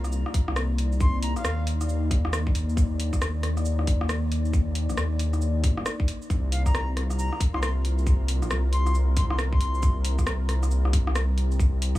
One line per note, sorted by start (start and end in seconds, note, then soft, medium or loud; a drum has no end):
0.00 0.24 C2 loud
0.00 6.26 A#3 medium
0.00 6.26 D#4 medium
0.00 6.25 D5 medium
0.04 cross-stick soft
0.04 shaker medium
0.12 shaker medium
0.26 cross-stick medium
0.34 kick loud
0.34 open hi-hat medium
0.48 1.35 C2 medium
0.48 cross-stick medium
0.56 cross-stick loud
0.56 shaker medium
0.78 open hi-hat medium
0.92 shaker soft
1.00 1.21 C6 medium
1.00 kick loud
1.00 shaker medium
1.23 1.34 A#5 medium
1.23 open hi-hat medium
1.36 1.44 A#1 medium
1.36 1.67 F5 loud
1.36 cross-stick soft
1.36 shaker medium
1.44 3.11 D#2 loud
1.44 cross-stick loud
1.44 shaker medium
1.67 open hi-hat medium
1.81 cross-stick soft
1.81 shaker medium
1.89 shaker medium
2.11 kick loud
2.11 open hi-hat medium
2.25 cross-stick medium
2.33 cross-stick loud
2.33 shaker medium
2.47 kick loud
2.55 open hi-hat medium
2.69 shaker soft
2.77 kick loud
2.77 shaker medium
3.00 open hi-hat medium
3.13 3.21 A#1 medium
3.13 kick medium
3.13 cross-stick soft
3.13 shaker medium
3.21 4.88 D#2 loud
3.21 cross-stick loud
3.21 shaker medium
3.43 cross-stick medium
3.43 open hi-hat medium
3.57 cross-stick soft
3.57 shaker medium
3.65 shaker medium
3.79 cross-stick medium
3.87 kick loud
3.87 open hi-hat medium
4.01 cross-stick medium
4.09 cross-stick loud
4.09 shaker medium
4.32 open hi-hat medium
4.45 shaker soft
4.53 kick loud
4.53 shaker medium
4.75 open hi-hat medium
4.89 4.97 A#1 medium
4.89 cross-stick soft
4.89 shaker medium
4.97 5.65 D#2 loud
4.97 cross-stick loud
4.97 shaker medium
5.19 open hi-hat medium
5.33 cross-stick soft
5.33 shaker medium
5.42 shaker medium
5.64 5.85 G1 medium
5.64 kick loud
5.64 open hi-hat medium
5.77 cross-stick medium
5.86 cross-stick loud
5.86 shaker medium
6.00 kick loud
6.08 open hi-hat medium
6.22 shaker soft
6.29 7.30 C2 loud
6.29 11.99 G3 medium
6.29 9.79 F4 medium
6.29 11.99 A#4 loud
6.29 kick loud
6.29 shaker medium
6.52 6.63 F5 medium
6.52 open hi-hat medium
6.66 6.89 A#5 medium
6.66 kick medium
6.66 cross-stick soft
6.66 shaker medium
6.75 cross-stick loud
6.75 shaker medium
6.97 cross-stick medium
6.97 open hi-hat medium
7.10 cross-stick soft
7.10 shaker medium
7.18 7.42 A#5 medium
7.18 shaker medium
7.33 cross-stick medium
7.40 kick loud
7.40 open hi-hat medium
7.53 8.41 C2 medium
7.53 7.59 C6 medium
7.53 cross-stick medium
7.62 7.71 C6 medium
7.62 cross-stick loud
7.62 shaker medium
7.85 open hi-hat medium
7.98 shaker soft
8.07 kick loud
8.07 shaker medium
8.28 open hi-hat medium
8.42 8.50 A#1 medium
8.42 cross-stick soft
8.42 shaker medium
8.51 10.17 C2 loud
8.51 cross-stick loud
8.51 shaker medium
8.73 8.96 C6 medium
8.73 open hi-hat medium
8.86 cross-stick soft
8.86 shaker medium
8.95 shaker medium
9.16 9.25 C6 medium
9.16 kick loud
9.16 open hi-hat medium
9.30 9.36 C6 medium
9.30 cross-stick medium
9.39 cross-stick loud
9.39 shaker medium
9.52 9.97 C6 medium
9.52 kick loud
9.61 open hi-hat medium
9.74 shaker soft
9.82 11.99 G4 medium
9.82 kick loud
9.82 shaker medium
10.05 open hi-hat medium
10.18 10.26 A#1 medium
10.18 kick medium
10.18 cross-stick soft
10.18 shaker medium
10.27 11.93 C2 loud
10.27 cross-stick loud
10.27 shaker medium
10.49 cross-stick medium
10.49 open hi-hat medium
10.63 cross-stick soft
10.63 shaker medium
10.71 shaker medium
10.85 cross-stick medium
10.93 kick loud
10.93 open hi-hat medium
11.07 cross-stick medium
11.15 cross-stick loud
11.15 shaker medium
11.38 open hi-hat medium
11.51 shaker soft
11.59 kick loud
11.59 shaker medium
11.82 open hi-hat medium
11.95 11.99 A#1 medium
11.95 kick medium
11.95 cross-stick soft
11.95 shaker medium